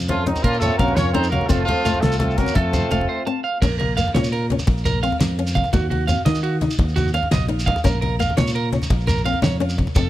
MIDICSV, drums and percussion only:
0, 0, Header, 1, 3, 480
1, 0, Start_track
1, 0, Key_signature, -5, "minor"
1, 0, Tempo, 352734
1, 2041, Time_signature, 12, 3, 24, 8
1, 13739, End_track
2, 0, Start_track
2, 0, Title_t, "Shekere"
2, 490, Note_on_c, 9, 82, 63
2, 626, Note_off_c, 9, 82, 0
2, 727, Note_on_c, 9, 82, 29
2, 836, Note_off_c, 9, 82, 0
2, 836, Note_on_c, 9, 82, 99
2, 968, Note_off_c, 9, 82, 0
2, 968, Note_on_c, 9, 82, 27
2, 1089, Note_off_c, 9, 82, 0
2, 1089, Note_on_c, 9, 82, 28
2, 1225, Note_off_c, 9, 82, 0
2, 1319, Note_on_c, 9, 82, 92
2, 1456, Note_off_c, 9, 82, 0
2, 1679, Note_on_c, 9, 82, 69
2, 1815, Note_off_c, 9, 82, 0
2, 2031, Note_on_c, 9, 82, 93
2, 2167, Note_off_c, 9, 82, 0
2, 2529, Note_on_c, 9, 82, 90
2, 2666, Note_off_c, 9, 82, 0
2, 2884, Note_on_c, 9, 82, 72
2, 3021, Note_off_c, 9, 82, 0
2, 3135, Note_on_c, 9, 82, 31
2, 3262, Note_off_c, 9, 82, 0
2, 3262, Note_on_c, 9, 82, 31
2, 3367, Note_off_c, 9, 82, 0
2, 3367, Note_on_c, 9, 82, 72
2, 3503, Note_off_c, 9, 82, 0
2, 3725, Note_on_c, 9, 82, 89
2, 3861, Note_off_c, 9, 82, 0
2, 3960, Note_on_c, 9, 82, 33
2, 4096, Note_off_c, 9, 82, 0
2, 4935, Note_on_c, 9, 82, 90
2, 5072, Note_off_c, 9, 82, 0
2, 5409, Note_on_c, 9, 82, 95
2, 5546, Note_off_c, 9, 82, 0
2, 5768, Note_on_c, 9, 82, 80
2, 5904, Note_off_c, 9, 82, 0
2, 6247, Note_on_c, 9, 82, 72
2, 6383, Note_off_c, 9, 82, 0
2, 6497, Note_on_c, 9, 82, 33
2, 6609, Note_off_c, 9, 82, 0
2, 6609, Note_on_c, 9, 82, 101
2, 6745, Note_off_c, 9, 82, 0
2, 6854, Note_on_c, 9, 82, 29
2, 6990, Note_off_c, 9, 82, 0
2, 7086, Note_on_c, 9, 82, 101
2, 7222, Note_off_c, 9, 82, 0
2, 7443, Note_on_c, 9, 82, 76
2, 7579, Note_off_c, 9, 82, 0
2, 7682, Note_on_c, 9, 82, 27
2, 7799, Note_off_c, 9, 82, 0
2, 7799, Note_on_c, 9, 82, 99
2, 7935, Note_off_c, 9, 82, 0
2, 8283, Note_on_c, 9, 82, 98
2, 8419, Note_off_c, 9, 82, 0
2, 8642, Note_on_c, 9, 82, 70
2, 8778, Note_off_c, 9, 82, 0
2, 9126, Note_on_c, 9, 82, 73
2, 9262, Note_off_c, 9, 82, 0
2, 9373, Note_on_c, 9, 82, 31
2, 9489, Note_off_c, 9, 82, 0
2, 9489, Note_on_c, 9, 82, 97
2, 9625, Note_off_c, 9, 82, 0
2, 9626, Note_on_c, 9, 82, 30
2, 9739, Note_off_c, 9, 82, 0
2, 9739, Note_on_c, 9, 82, 29
2, 9875, Note_off_c, 9, 82, 0
2, 9975, Note_on_c, 9, 82, 93
2, 10111, Note_off_c, 9, 82, 0
2, 10334, Note_on_c, 9, 82, 72
2, 10470, Note_off_c, 9, 82, 0
2, 10574, Note_on_c, 9, 82, 27
2, 10694, Note_off_c, 9, 82, 0
2, 10694, Note_on_c, 9, 82, 97
2, 10830, Note_off_c, 9, 82, 0
2, 11175, Note_on_c, 9, 82, 91
2, 11311, Note_off_c, 9, 82, 0
2, 11533, Note_on_c, 9, 82, 72
2, 11669, Note_off_c, 9, 82, 0
2, 12012, Note_on_c, 9, 82, 73
2, 12148, Note_off_c, 9, 82, 0
2, 12251, Note_on_c, 9, 82, 30
2, 12366, Note_off_c, 9, 82, 0
2, 12366, Note_on_c, 9, 82, 106
2, 12488, Note_off_c, 9, 82, 0
2, 12488, Note_on_c, 9, 82, 32
2, 12611, Note_off_c, 9, 82, 0
2, 12611, Note_on_c, 9, 82, 30
2, 12747, Note_off_c, 9, 82, 0
2, 12840, Note_on_c, 9, 82, 96
2, 12976, Note_off_c, 9, 82, 0
2, 13190, Note_on_c, 9, 82, 75
2, 13326, Note_off_c, 9, 82, 0
2, 13427, Note_on_c, 9, 82, 31
2, 13540, Note_off_c, 9, 82, 0
2, 13540, Note_on_c, 9, 82, 99
2, 13676, Note_off_c, 9, 82, 0
2, 13739, End_track
3, 0, Start_track
3, 0, Title_t, "Drums"
3, 115, Note_on_c, 9, 42, 51
3, 126, Note_on_c, 9, 62, 94
3, 126, Note_on_c, 9, 64, 98
3, 251, Note_off_c, 9, 42, 0
3, 262, Note_off_c, 9, 62, 0
3, 262, Note_off_c, 9, 64, 0
3, 359, Note_on_c, 9, 42, 47
3, 364, Note_on_c, 9, 63, 96
3, 486, Note_on_c, 9, 64, 78
3, 495, Note_off_c, 9, 42, 0
3, 500, Note_off_c, 9, 63, 0
3, 601, Note_on_c, 9, 36, 88
3, 602, Note_on_c, 9, 42, 67
3, 604, Note_on_c, 9, 62, 80
3, 622, Note_off_c, 9, 64, 0
3, 737, Note_off_c, 9, 36, 0
3, 738, Note_off_c, 9, 42, 0
3, 740, Note_off_c, 9, 62, 0
3, 839, Note_on_c, 9, 64, 95
3, 840, Note_on_c, 9, 42, 54
3, 975, Note_off_c, 9, 64, 0
3, 976, Note_off_c, 9, 42, 0
3, 1080, Note_on_c, 9, 36, 69
3, 1081, Note_on_c, 9, 42, 53
3, 1081, Note_on_c, 9, 62, 94
3, 1202, Note_on_c, 9, 64, 69
3, 1216, Note_off_c, 9, 36, 0
3, 1217, Note_off_c, 9, 42, 0
3, 1217, Note_off_c, 9, 62, 0
3, 1315, Note_on_c, 9, 38, 87
3, 1315, Note_on_c, 9, 42, 68
3, 1319, Note_on_c, 9, 63, 95
3, 1338, Note_off_c, 9, 64, 0
3, 1451, Note_off_c, 9, 38, 0
3, 1451, Note_off_c, 9, 42, 0
3, 1455, Note_off_c, 9, 63, 0
3, 1559, Note_on_c, 9, 62, 88
3, 1559, Note_on_c, 9, 64, 78
3, 1560, Note_on_c, 9, 42, 48
3, 1695, Note_off_c, 9, 62, 0
3, 1695, Note_off_c, 9, 64, 0
3, 1696, Note_off_c, 9, 42, 0
3, 1796, Note_on_c, 9, 42, 44
3, 1806, Note_on_c, 9, 63, 94
3, 1920, Note_on_c, 9, 64, 75
3, 1932, Note_off_c, 9, 42, 0
3, 1942, Note_off_c, 9, 63, 0
3, 2040, Note_on_c, 9, 36, 91
3, 2041, Note_on_c, 9, 42, 69
3, 2047, Note_off_c, 9, 64, 0
3, 2047, Note_on_c, 9, 62, 88
3, 2047, Note_on_c, 9, 64, 28
3, 2176, Note_off_c, 9, 36, 0
3, 2177, Note_off_c, 9, 42, 0
3, 2183, Note_off_c, 9, 62, 0
3, 2183, Note_off_c, 9, 64, 0
3, 2285, Note_on_c, 9, 42, 51
3, 2293, Note_on_c, 9, 63, 100
3, 2293, Note_on_c, 9, 64, 95
3, 2421, Note_off_c, 9, 42, 0
3, 2430, Note_off_c, 9, 63, 0
3, 2430, Note_off_c, 9, 64, 0
3, 2522, Note_on_c, 9, 42, 54
3, 2532, Note_on_c, 9, 62, 85
3, 2532, Note_on_c, 9, 64, 25
3, 2643, Note_off_c, 9, 64, 0
3, 2643, Note_on_c, 9, 64, 69
3, 2658, Note_off_c, 9, 42, 0
3, 2668, Note_off_c, 9, 62, 0
3, 2754, Note_on_c, 9, 63, 89
3, 2760, Note_on_c, 9, 38, 88
3, 2760, Note_on_c, 9, 42, 60
3, 2779, Note_off_c, 9, 64, 0
3, 2890, Note_off_c, 9, 63, 0
3, 2896, Note_off_c, 9, 38, 0
3, 2896, Note_off_c, 9, 42, 0
3, 2992, Note_on_c, 9, 62, 91
3, 2992, Note_on_c, 9, 64, 94
3, 2998, Note_on_c, 9, 42, 55
3, 3128, Note_off_c, 9, 62, 0
3, 3128, Note_off_c, 9, 64, 0
3, 3134, Note_off_c, 9, 42, 0
3, 3237, Note_on_c, 9, 63, 95
3, 3241, Note_on_c, 9, 36, 62
3, 3241, Note_on_c, 9, 42, 51
3, 3353, Note_on_c, 9, 64, 77
3, 3373, Note_off_c, 9, 63, 0
3, 3377, Note_off_c, 9, 36, 0
3, 3377, Note_off_c, 9, 42, 0
3, 3474, Note_on_c, 9, 62, 94
3, 3482, Note_on_c, 9, 42, 68
3, 3483, Note_on_c, 9, 36, 88
3, 3489, Note_off_c, 9, 64, 0
3, 3604, Note_on_c, 9, 64, 30
3, 3610, Note_off_c, 9, 62, 0
3, 3618, Note_off_c, 9, 42, 0
3, 3619, Note_off_c, 9, 36, 0
3, 3721, Note_off_c, 9, 64, 0
3, 3721, Note_on_c, 9, 63, 105
3, 3721, Note_on_c, 9, 64, 95
3, 3722, Note_on_c, 9, 42, 53
3, 3854, Note_off_c, 9, 64, 0
3, 3854, Note_on_c, 9, 64, 28
3, 3857, Note_off_c, 9, 63, 0
3, 3858, Note_off_c, 9, 42, 0
3, 3965, Note_on_c, 9, 42, 52
3, 3968, Note_off_c, 9, 64, 0
3, 3968, Note_on_c, 9, 62, 91
3, 3968, Note_on_c, 9, 64, 28
3, 4099, Note_off_c, 9, 64, 0
3, 4099, Note_on_c, 9, 64, 66
3, 4101, Note_off_c, 9, 42, 0
3, 4104, Note_off_c, 9, 62, 0
3, 4235, Note_off_c, 9, 64, 0
3, 4928, Note_on_c, 9, 49, 90
3, 4929, Note_on_c, 9, 36, 102
3, 4944, Note_on_c, 9, 62, 100
3, 5064, Note_off_c, 9, 49, 0
3, 5065, Note_off_c, 9, 36, 0
3, 5080, Note_off_c, 9, 62, 0
3, 5163, Note_on_c, 9, 51, 52
3, 5180, Note_on_c, 9, 63, 100
3, 5180, Note_on_c, 9, 64, 32
3, 5299, Note_off_c, 9, 51, 0
3, 5316, Note_off_c, 9, 63, 0
3, 5316, Note_off_c, 9, 64, 0
3, 5404, Note_on_c, 9, 51, 51
3, 5422, Note_on_c, 9, 64, 28
3, 5540, Note_off_c, 9, 51, 0
3, 5548, Note_off_c, 9, 64, 0
3, 5548, Note_on_c, 9, 64, 68
3, 5641, Note_on_c, 9, 38, 83
3, 5641, Note_on_c, 9, 51, 58
3, 5662, Note_on_c, 9, 62, 92
3, 5662, Note_on_c, 9, 63, 89
3, 5684, Note_off_c, 9, 64, 0
3, 5777, Note_off_c, 9, 38, 0
3, 5777, Note_off_c, 9, 51, 0
3, 5785, Note_on_c, 9, 64, 29
3, 5798, Note_off_c, 9, 62, 0
3, 5798, Note_off_c, 9, 63, 0
3, 5886, Note_on_c, 9, 51, 57
3, 5921, Note_off_c, 9, 64, 0
3, 6022, Note_off_c, 9, 51, 0
3, 6126, Note_on_c, 9, 51, 54
3, 6127, Note_on_c, 9, 63, 97
3, 6247, Note_on_c, 9, 64, 75
3, 6262, Note_off_c, 9, 51, 0
3, 6263, Note_off_c, 9, 63, 0
3, 6357, Note_on_c, 9, 62, 94
3, 6364, Note_on_c, 9, 51, 77
3, 6366, Note_on_c, 9, 36, 94
3, 6383, Note_off_c, 9, 64, 0
3, 6493, Note_off_c, 9, 62, 0
3, 6500, Note_off_c, 9, 51, 0
3, 6503, Note_off_c, 9, 36, 0
3, 6607, Note_on_c, 9, 63, 101
3, 6607, Note_on_c, 9, 64, 30
3, 6608, Note_on_c, 9, 51, 56
3, 6743, Note_off_c, 9, 63, 0
3, 6743, Note_off_c, 9, 64, 0
3, 6744, Note_off_c, 9, 51, 0
3, 6848, Note_on_c, 9, 51, 60
3, 6970, Note_on_c, 9, 64, 73
3, 6985, Note_off_c, 9, 51, 0
3, 7084, Note_on_c, 9, 62, 90
3, 7084, Note_on_c, 9, 63, 90
3, 7085, Note_on_c, 9, 38, 93
3, 7085, Note_on_c, 9, 51, 73
3, 7106, Note_off_c, 9, 64, 0
3, 7220, Note_off_c, 9, 62, 0
3, 7220, Note_off_c, 9, 63, 0
3, 7221, Note_off_c, 9, 38, 0
3, 7221, Note_off_c, 9, 51, 0
3, 7333, Note_on_c, 9, 51, 61
3, 7469, Note_off_c, 9, 51, 0
3, 7557, Note_on_c, 9, 63, 90
3, 7567, Note_on_c, 9, 36, 59
3, 7575, Note_on_c, 9, 51, 48
3, 7674, Note_on_c, 9, 64, 75
3, 7693, Note_off_c, 9, 63, 0
3, 7703, Note_off_c, 9, 36, 0
3, 7711, Note_off_c, 9, 51, 0
3, 7804, Note_on_c, 9, 36, 96
3, 7805, Note_on_c, 9, 51, 67
3, 7808, Note_on_c, 9, 62, 99
3, 7810, Note_off_c, 9, 64, 0
3, 7940, Note_off_c, 9, 36, 0
3, 7941, Note_off_c, 9, 51, 0
3, 7944, Note_off_c, 9, 62, 0
3, 8044, Note_on_c, 9, 63, 92
3, 8044, Note_on_c, 9, 64, 31
3, 8050, Note_on_c, 9, 51, 53
3, 8180, Note_off_c, 9, 63, 0
3, 8180, Note_off_c, 9, 64, 0
3, 8186, Note_off_c, 9, 51, 0
3, 8289, Note_on_c, 9, 51, 50
3, 8425, Note_off_c, 9, 51, 0
3, 8517, Note_on_c, 9, 62, 83
3, 8517, Note_on_c, 9, 63, 90
3, 8518, Note_on_c, 9, 38, 85
3, 8518, Note_on_c, 9, 51, 64
3, 8648, Note_on_c, 9, 64, 30
3, 8653, Note_off_c, 9, 62, 0
3, 8653, Note_off_c, 9, 63, 0
3, 8654, Note_off_c, 9, 38, 0
3, 8654, Note_off_c, 9, 51, 0
3, 8757, Note_on_c, 9, 51, 51
3, 8784, Note_off_c, 9, 64, 0
3, 8893, Note_off_c, 9, 51, 0
3, 8996, Note_on_c, 9, 38, 28
3, 8996, Note_on_c, 9, 51, 51
3, 9002, Note_on_c, 9, 63, 95
3, 9132, Note_off_c, 9, 38, 0
3, 9132, Note_off_c, 9, 51, 0
3, 9138, Note_off_c, 9, 63, 0
3, 9234, Note_on_c, 9, 51, 71
3, 9237, Note_on_c, 9, 36, 93
3, 9242, Note_on_c, 9, 62, 88
3, 9370, Note_off_c, 9, 51, 0
3, 9373, Note_off_c, 9, 36, 0
3, 9378, Note_off_c, 9, 62, 0
3, 9473, Note_on_c, 9, 51, 54
3, 9486, Note_on_c, 9, 63, 96
3, 9486, Note_on_c, 9, 64, 33
3, 9603, Note_off_c, 9, 64, 0
3, 9603, Note_on_c, 9, 64, 29
3, 9609, Note_off_c, 9, 51, 0
3, 9622, Note_off_c, 9, 63, 0
3, 9713, Note_on_c, 9, 51, 54
3, 9739, Note_off_c, 9, 64, 0
3, 9838, Note_on_c, 9, 64, 77
3, 9849, Note_off_c, 9, 51, 0
3, 9952, Note_on_c, 9, 38, 94
3, 9952, Note_on_c, 9, 51, 72
3, 9958, Note_on_c, 9, 62, 95
3, 9958, Note_on_c, 9, 63, 98
3, 9974, Note_off_c, 9, 64, 0
3, 10088, Note_off_c, 9, 38, 0
3, 10088, Note_off_c, 9, 51, 0
3, 10094, Note_off_c, 9, 62, 0
3, 10094, Note_off_c, 9, 63, 0
3, 10193, Note_on_c, 9, 51, 54
3, 10329, Note_off_c, 9, 51, 0
3, 10438, Note_on_c, 9, 51, 52
3, 10439, Note_on_c, 9, 36, 69
3, 10446, Note_on_c, 9, 63, 104
3, 10560, Note_on_c, 9, 64, 92
3, 10574, Note_off_c, 9, 51, 0
3, 10575, Note_off_c, 9, 36, 0
3, 10583, Note_off_c, 9, 63, 0
3, 10678, Note_on_c, 9, 36, 95
3, 10678, Note_on_c, 9, 51, 67
3, 10686, Note_on_c, 9, 62, 96
3, 10696, Note_off_c, 9, 64, 0
3, 10814, Note_off_c, 9, 36, 0
3, 10814, Note_off_c, 9, 51, 0
3, 10822, Note_off_c, 9, 62, 0
3, 10914, Note_on_c, 9, 51, 53
3, 10927, Note_on_c, 9, 63, 93
3, 10927, Note_on_c, 9, 64, 32
3, 11050, Note_off_c, 9, 51, 0
3, 11063, Note_off_c, 9, 63, 0
3, 11063, Note_off_c, 9, 64, 0
3, 11158, Note_on_c, 9, 51, 56
3, 11183, Note_on_c, 9, 64, 31
3, 11294, Note_off_c, 9, 51, 0
3, 11294, Note_off_c, 9, 64, 0
3, 11294, Note_on_c, 9, 64, 79
3, 11398, Note_on_c, 9, 38, 89
3, 11398, Note_on_c, 9, 51, 66
3, 11406, Note_on_c, 9, 62, 98
3, 11406, Note_on_c, 9, 63, 101
3, 11431, Note_off_c, 9, 64, 0
3, 11528, Note_on_c, 9, 64, 29
3, 11534, Note_off_c, 9, 38, 0
3, 11534, Note_off_c, 9, 51, 0
3, 11542, Note_off_c, 9, 62, 0
3, 11542, Note_off_c, 9, 63, 0
3, 11642, Note_on_c, 9, 51, 53
3, 11664, Note_off_c, 9, 64, 0
3, 11779, Note_off_c, 9, 51, 0
3, 11872, Note_on_c, 9, 63, 101
3, 11879, Note_on_c, 9, 38, 26
3, 11879, Note_on_c, 9, 51, 46
3, 11999, Note_on_c, 9, 64, 79
3, 12008, Note_off_c, 9, 63, 0
3, 12015, Note_off_c, 9, 38, 0
3, 12015, Note_off_c, 9, 51, 0
3, 12115, Note_on_c, 9, 62, 89
3, 12117, Note_on_c, 9, 36, 101
3, 12117, Note_on_c, 9, 51, 68
3, 12135, Note_off_c, 9, 64, 0
3, 12252, Note_off_c, 9, 62, 0
3, 12253, Note_off_c, 9, 36, 0
3, 12253, Note_off_c, 9, 51, 0
3, 12343, Note_on_c, 9, 63, 96
3, 12343, Note_on_c, 9, 64, 34
3, 12355, Note_on_c, 9, 51, 51
3, 12473, Note_off_c, 9, 64, 0
3, 12473, Note_on_c, 9, 64, 30
3, 12479, Note_off_c, 9, 63, 0
3, 12491, Note_off_c, 9, 51, 0
3, 12598, Note_on_c, 9, 51, 54
3, 12609, Note_off_c, 9, 64, 0
3, 12705, Note_on_c, 9, 64, 74
3, 12734, Note_off_c, 9, 51, 0
3, 12821, Note_on_c, 9, 62, 107
3, 12821, Note_on_c, 9, 63, 99
3, 12841, Note_off_c, 9, 64, 0
3, 12841, Note_on_c, 9, 38, 91
3, 12841, Note_on_c, 9, 51, 63
3, 12957, Note_off_c, 9, 62, 0
3, 12957, Note_off_c, 9, 63, 0
3, 12977, Note_off_c, 9, 38, 0
3, 12977, Note_off_c, 9, 51, 0
3, 13081, Note_on_c, 9, 51, 55
3, 13218, Note_off_c, 9, 51, 0
3, 13309, Note_on_c, 9, 63, 96
3, 13316, Note_on_c, 9, 36, 63
3, 13319, Note_on_c, 9, 51, 44
3, 13431, Note_on_c, 9, 64, 70
3, 13445, Note_off_c, 9, 63, 0
3, 13452, Note_off_c, 9, 36, 0
3, 13455, Note_off_c, 9, 51, 0
3, 13554, Note_on_c, 9, 36, 87
3, 13554, Note_on_c, 9, 51, 61
3, 13555, Note_on_c, 9, 62, 98
3, 13567, Note_off_c, 9, 64, 0
3, 13690, Note_off_c, 9, 36, 0
3, 13690, Note_off_c, 9, 51, 0
3, 13691, Note_off_c, 9, 62, 0
3, 13739, End_track
0, 0, End_of_file